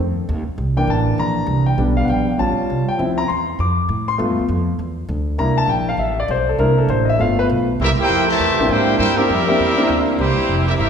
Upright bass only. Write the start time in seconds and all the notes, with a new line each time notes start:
0.00 F2
0.29 D#2
0.48 muted upright bass stroke
0.58 C2
0.87 A1
1.18 A#1
1.47 C2
1.78 B1
2.08 A#1
2.39 A1
2.58 muted upright bass stroke
2.70 C2
2.88 muted upright bass stroke
2.99 D2
3.29 E2
3.59 F2
3.89 A2
4.19 G2
4.30 F2
4.39 D2
4.48 F2
4.79 E2
5.09 D2
5.38 C2
5.67 A#1
5.97 A1
6.28 B1
6.58 C2
6.89 A1
7.19 G1
7.49 B1
7.80 C2
7.99 muted upright bass stroke
8.09 F2
8.39 E2
8.49 C2
8.59 A#1
8.69 G#2
8.99 G2
9.29 F2
9.59 E2
9.89 D2
10.19 C2
10.38 muted upright bass stroke
10.48 F1
10.79 G1